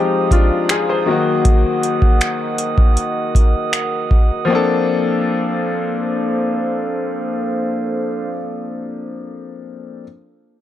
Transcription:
Already playing: grand piano F3 G#3 C4 D#4 G4, glass harmonica C5 F5 A#5 D#6
0.31 grand piano D4 F4, kick, closed hi-hat
0.69 grand piano F4 G#4, finger snap, closed hi-hat
0.89 grand piano G#4 C5
1.06 grand piano D#3 F#3 A#3 D#4, glass harmonica A#4 D#5 F#5
1.11 grand piano F#4
1.45 kick, closed hi-hat
1.83 closed hi-hat
2.02 kick
2.21 finger snap, closed hi-hat
2.58 closed hi-hat
2.78 kick
2.97 closed hi-hat
3.35 kick, closed hi-hat
3.73 finger snap, closed hi-hat
4.11 kick
4.45 grand piano F3 A#3
4.49 glass harmonica A#3 D4 A4 C5 F5, grand piano C4 D4
4.55 grand piano A4

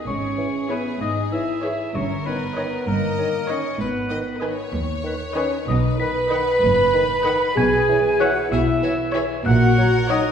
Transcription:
0.06 double bass section G#1, cello section G#2, french horn section C#4, violin section G#4, flute C#5, oboe C#5, celesta C#6
0.38 bassoon E3, clarinet C#5
0.69 bassoon E3, french horn section B3, viola section G#4 C#5, flute B4, oboe B4, clarinet C#5, violin section E5, celesta B5
1.00 double bass section G#1, cello section G#2, french horn section D#4, oboe D#5, flute D#5, celesta D#6
1.32 bassoon E3, french horn section E4, clarinet C#5, flute E5, oboe E5, celesta E6
1.64 bassoon E3, viola section G#4 C#5, clarinet C#5, violin section E5
1.94 double bass section G1, cello section G2, french horn section C#4, violin section A#4, flute C#5, oboe C#5, celesta C#6
2.26 bassoon D#3, french horn section B3, flute B4, oboe B4, clarinet C#5, celesta B5
2.56 bassoon D#3, viola section C#5 D#5, clarinet C#5, violin section D#5
2.87 double bass section G1, cello section G2, french horn section A#3, oboe A#4, flute A#4, violin section D#5, celesta A#5
3.18 bassoon D#3, clarinet C#5
3.49 bassoon D#3, french horn section C#4, viola section C#5 D#5, clarinet C#5, oboe C#5, flute C#5, violin section D#5, celesta C#6
3.80 double bass section G#1, cello section G#2, french horn section B3, violin section B4, oboe B4, flute B4, celesta B5
4.10 bassoon D#3, clarinet B4, violin section D#5
4.42 bassoon D#3, viola section B4 D#5, clarinet B4, violin section C#5 G#5
4.73 double bass section D#2, cello section D#2
5.04 bassoon D#3, clarinet B4
5.35 bassoon D#3, french horn section C#4, viola section B4 D#5, clarinet B4, oboe C#5, flute C#5, violin section G#5, celesta C#6
5.68 double bass section B1, cello section B2, french horn section D#4, violin section B4, oboe D#5, flute D#5, celesta D#6
5.99 bassoon D#3, french horn section B4, clarinet B4, flute B5, oboe B5, celesta B6
6.30 bassoon D#3, viola section B4 D#5, clarinet B4, violin section F#5
6.62 double bass section F#1, cello section F#2
6.94 bassoon D#3, clarinet B4
7.25 bassoon D#3, viola section B4 D#5, clarinet B4, violin section F#5
7.55 double bass section B1, cello section B2, french horn section G#4, oboe G#5, flute G#5, celesta G#6
7.89 bassoon E3, clarinet C#5
8.19 bassoon E3, french horn section F#4, viola section C#5, clarinet C#5, violin section E5, oboe F#5, flute F#5, celesta F#6
8.49 double bass section B1, cello section B2, french horn section E4, violin section G#4, oboe E5, flute E5, celesta E6
8.83 bassoon E3, violin section F#4, clarinet C#5
9.14 bassoon E3, violin section G#4 E5, viola section C#5, clarinet C#5
9.44 double bass section A#1, cello section A#2, french horn section F#4, violin section A#4, oboe F#5, flute F#5, celesta F#6
9.78 bassoon F#3, clarinet C#5
10.10 bassoon F#3, french horn section D#4, viola section C#5, clarinet C#5, flute D#5, oboe D#5, violin section F#5, celesta D#6

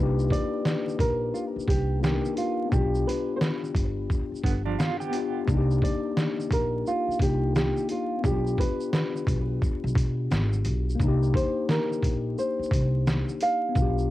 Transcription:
Already playing: upright bass C2, tine electric piano A#3 D4 F4 B4
0.00 tine electric piano D#4 G4
0.19 shaker
0.30 nylon-string guitar D5, kick, closed hi-hat, shaker
0.65 snare, shaker
0.88 shaker
0.99 upright bass A#1, nylon-string guitar A#4, kick, closed hi-hat, shaker
1.34 nylon-string guitar F4, shaker
1.56 muted upright bass stroke, shaker
1.68 upright bass C2, nylon-string guitar G4, kick, closed hi-hat, shaker
2.01 tine electric piano A#3 D4, nylon-string guitar G4, snare, shaker
2.05 tine electric piano D#4 A#4
2.25 shaker
2.37 nylon-string guitar F4, closed hi-hat, shaker
2.65 tine electric piano B3
2.70 upright bass B1, tine electric piano D4, nylon-string guitar G4, kick, shaker
2.74 tine electric piano F4
2.78 tine electric piano G4
2.95 shaker
3.07 nylon-string guitar B4, closed hi-hat, shaker
3.36 nylon-string guitar C5
3.41 nylon-string guitar B4, snare, shaker
3.64 shaker
3.75 upright bass G1, kick, closed hi-hat, shaker
4.10 kick, shaker
4.32 muted upright bass stroke, shaker
4.43 upright bass G1, clean electric guitar D3 B3, kick, closed hi-hat, shaker
4.65 clean electric guitar F3 D4
4.79 clean electric guitar F4, snare, shaker
5.00 clean electric guitar B3 G4, shaker
5.11 tine electric piano B3 D4, closed hi-hat, shaker
5.15 tine electric piano F4 G4
5.45 upright bass C2, tine electric piano A#3, kick, shaker
5.49 tine electric piano D4
5.54 tine electric piano D#4
5.58 tine electric piano G4
5.71 shaker
5.82 nylon-string guitar D5, kick, closed hi-hat, shaker
6.17 snare, shaker
6.40 shaker
6.51 upright bass A#1, nylon-string guitar A#4, kick, closed hi-hat, shaker
6.87 nylon-string guitar F4, shaker
7.08 muted upright bass stroke, shaker
7.19 upright bass C2, tine electric piano A#3 D4, nylon-string guitar G4, kick, closed hi-hat, shaker
7.24 tine electric piano D#4 F4
7.56 nylon-string guitar G4, snare, shaker
7.77 shaker
7.89 nylon-string guitar F4, closed hi-hat, shaker
8.18 tine electric piano B3
8.23 upright bass B1, tine electric piano D4, nylon-string guitar G4, kick, shaker
8.27 tine electric piano F4
8.31 tine electric piano G4
8.47 shaker
8.58 nylon-string guitar B4, kick, closed hi-hat, shaker
8.80 shaker
8.93 nylon-string guitar B4, snare, shaker
9.16 shaker
9.27 upright bass B1, kick, closed hi-hat, shaker
9.62 kick, shaker
9.84 upright bass B1, shaker
9.95 upright bass B2, kick, closed hi-hat, shaker
10.31 upright bass G#1, snare, shaker
10.53 shaker
10.65 upright bass B1, closed hi-hat, shaker
10.90 shaker
10.95 tine electric piano A#3
10.99 upright bass C2, tine electric piano D4, kick, shaker
11.04 tine electric piano D#4
11.08 tine electric piano G4
11.23 shaker
11.34 nylon-string guitar C5, kick, closed hi-hat, shaker
11.69 nylon-string guitar A#4, snare, shaker
11.92 shaker
12.03 upright bass A#1, kick, closed hi-hat, shaker
12.38 nylon-string guitar C5, shaker
12.59 muted upright bass stroke, shaker
12.71 upright bass C2, kick, closed hi-hat, shaker
13.07 snare, shaker
13.29 shaker
13.41 nylon-string guitar F5, closed hi-hat, shaker
13.69 tine electric piano B3
13.73 upright bass B1, tine electric piano D4, kick, shaker
13.78 tine electric piano F4
13.82 tine electric piano G4
13.98 shaker

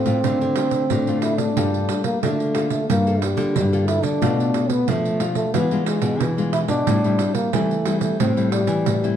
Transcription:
Already playing: nylon-string guitar A2, trombone C4
0.05 nylon-string guitar A2 A3 C4 F4, pandeiro
0.24 nylon-string guitar D3 A3 C4 F4, pandeiro
0.41 nylon-string guitar D3, pandeiro
0.56 nylon-string guitar A3 C4 F4, pandeiro
0.71 pandeiro
0.90 nylon-string guitar A2 D3, pandeiro
1.07 nylon-string guitar A3 C4 F4, pandeiro
1.22 trombone E4, pandeiro
1.37 trombone D4, pandeiro
1.56 nylon-string guitar G2 G3 A#3 F4 A4, pandeiro
1.74 pandeiro
1.89 pandeiro
2.04 trombone A#3, pandeiro
2.22 nylon-string guitar D3 A#3 F4 A4, trombone A3, pandeiro
2.40 pandeiro
2.55 nylon-string guitar A#3 F4 A4, pandeiro
2.70 trombone A3, pandeiro
2.89 nylon-string guitar G2 G3, trombone A#3, pandeiro
3.06 nylon-string guitar A#3 F4 A4, pandeiro
3.21 trombone G3, pandeiro
3.37 nylon-string guitar D3 A#3 F4 A4, pandeiro
3.55 nylon-string guitar G2 D3, pandeiro
3.72 nylon-string guitar A#3 F4 A4, pandeiro
3.87 trombone E4, pandeiro
4.03 nylon-string guitar D3, trombone D4, pandeiro
4.22 nylon-string guitar B2 A3 D4 F4, pandeiro
4.40 pandeiro
4.54 pandeiro
4.70 trombone B3, pandeiro
4.88 nylon-string guitar B2 F3 A3 D4 F4, trombone A3, pandeiro
5.05 pandeiro
5.20 nylon-string guitar A3 D4 F4, pandeiro
5.35 trombone A3, pandeiro
5.54 nylon-string guitar E3 G#3 D4 F4, trombone B3, pandeiro
5.71 nylon-string guitar G#3 D4 F4, pandeiro
5.86 trombone G#3, pandeiro
6.02 nylon-string guitar B2, pandeiro
6.20 nylon-string guitar B2 E3, pandeiro
6.38 nylon-string guitar G#3 D4 F4, pandeiro
6.52 trombone E4, pandeiro
6.68 nylon-string guitar B2, trombone D4, pandeiro
6.87 nylon-string guitar A2 G3 C4 E4, pandeiro
7.04 nylon-string guitar G3 C4 E4, pandeiro
7.19 pandeiro
7.35 trombone A#3, pandeiro
7.53 nylon-string guitar E3 G3 C4 E4, trombone A3, pandeiro
7.71 pandeiro
7.85 nylon-string guitar G3 C4 E4, pandeiro
8.00 trombone A3, pandeiro
8.20 nylon-string guitar A2, trombone C4, pandeiro
8.37 nylon-string guitar G3 C4 E4, pandeiro
8.52 trombone G3, pandeiro
8.67 nylon-string guitar E3, pandeiro
8.86 nylon-string guitar A2 E3, pandeiro
9.04 nylon-string guitar G3 C4 E4, pandeiro

